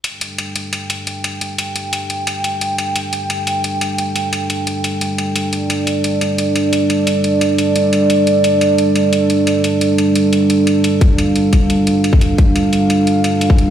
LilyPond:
<<
  \new Staff \with { instrumentName = "Analog synth pad" } { \time 4/4 \key c \dorian \tempo 4 = 175 << { g''1~ | g''1~ | g''1~ | g''1 |
d''1~ | d''1~ | d''1~ | d''1 |
f''1~ | f''1 | } \\ { <g d' a'>1~ | <g d' a'>1~ | <g d' a'>1~ | <g d' a'>1~ |
<g d' a'>1~ | <g d' a'>1~ | <g d' a'>1~ | <g d' a'>1~ |
<g d' a'>1~ | <g d' a'>1 | } >> }
  \new DrumStaff \with { instrumentName = "Drums" } \drummode { \time 4/4 hh8 hh8 hh8 hh8 hh8 hh8 hh8 hh8 | hh8 hh8 hh8 hh8 hh8 hh8 hh8 hh8 | hh8 hh8 hh8 hh8 hh8 hh8 hh8 hh8 | hh8 hh8 hh8 hh8 hh8 hh8 hh8 hh8 |
hh8 hh8 hh8 hh8 hh8 hh8 hh8 hh8 | hh8 hh8 hh8 hh8 hh8 hh8 hh8 hh8 | hh8 hh8 hh8 hh8 hh8 hh8 hh8 hh8 | hh8 hh8 hh8 hh8 hh8 hh8 hh8 hh8 |
<hh bd>8 hh8 hh8 <hh bd>8 hh8 hh8 hh16 bd16 hh8 | <hh bd>8 hh8 hh8 hh8 hh8 hh8 hh16 bd16 hh8 | }
>>